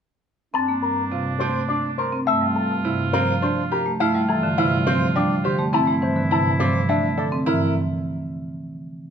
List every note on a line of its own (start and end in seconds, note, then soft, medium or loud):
0.54 2.12 G2 medium
0.54 0.73 C4 medium
0.54 2.09 D4 medium
0.54 0.73 A5 medium
0.68 0.87 A#3 medium
0.82 1.02 A#4 medium
1.12 1.31 C3 medium
1.12 1.31 F4 medium
1.40 1.60 A3 medium
1.40 1.59 C4 medium
1.40 1.59 C5 medium
1.69 1.88 D4 medium
1.69 1.88 D5 medium
1.98 2.17 A#4 medium
1.98 2.17 C5 medium
2.12 2.32 C4 medium
2.27 3.85 G2 medium
2.27 2.46 A3 medium
2.27 3.82 F4 medium
2.27 2.46 E5 medium
2.41 2.60 G3 medium
2.56 2.75 A4 medium
2.85 3.04 C3 medium
2.85 3.04 E4 medium
3.13 3.33 F3 medium
3.13 3.33 C4 medium
3.13 3.32 A#4 medium
3.42 3.61 D4 medium
3.42 3.61 C5 medium
3.71 3.90 G4 medium
3.71 3.91 A#4 medium
3.86 3.99 A3 medium
4.00 5.58 G2 medium
4.00 4.19 A3 medium
4.00 4.19 E4 medium
4.00 5.55 F4 medium
4.00 4.19 F5 loud
4.14 4.34 G3 medium
4.29 4.48 E3 medium
4.29 4.48 A4 medium
4.43 4.62 D3 medium
4.58 4.77 C3 medium
4.58 4.77 E4 medium
4.58 4.77 F5 medium
4.87 5.06 F3 medium
4.87 5.06 C4 medium
4.87 5.06 C5 medium
5.15 5.34 G3 medium
5.15 5.35 D4 medium
5.15 5.35 D5 medium
5.44 5.63 D3 medium
5.44 5.63 G4 medium
5.44 5.64 C5 medium
5.58 5.78 A3 medium
5.73 7.31 G2 medium
5.73 5.92 C4 medium
5.73 7.28 E4 medium
5.73 5.92 E4 medium
5.73 5.93 A5 medium
5.87 6.07 A3 medium
6.02 6.21 E3 medium
6.02 6.21 C5 medium
6.16 6.35 D3 medium
6.31 6.50 C3 medium
6.31 6.50 E4 medium
6.31 6.50 A5 medium
6.60 6.79 F3 medium
6.60 6.79 C4 medium
6.60 6.79 D5 medium
6.89 7.08 A3 medium
6.89 7.08 D4 medium
6.89 7.08 E5 medium
7.18 7.37 D3 medium
7.18 7.36 A4 medium
7.18 7.37 D5 medium
7.32 7.51 C4 medium
7.46 7.74 G2 medium
7.46 7.73 E3 medium
7.46 7.73 E4 medium
7.46 7.74 A#4 medium